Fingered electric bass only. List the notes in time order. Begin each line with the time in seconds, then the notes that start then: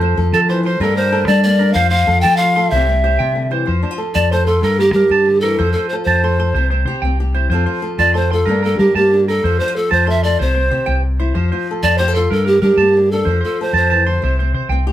Already playing: F2
0.18 F2
0.33 F3
0.80 G2
1.28 G3
1.75 F2
2.08 F2
2.24 F3
2.72 C2
3.20 C3
3.68 F2
4.15 F2
4.62 G2
4.94 G3
5.10 G2
5.60 F2
6.06 F2
6.54 C2
6.85 C3
7.02 C2
7.50 F2
7.99 F2
8.47 G2
8.79 G3
8.95 G2
9.44 F2
9.92 F2
10.40 C2
10.72 C3
10.88 C2
11.36 F2
11.83 F2
12.31 G2
12.62 G3
12.77 G2
13.26 F2
13.73 F2
14.23 C2
14.54 C3
14.69 C2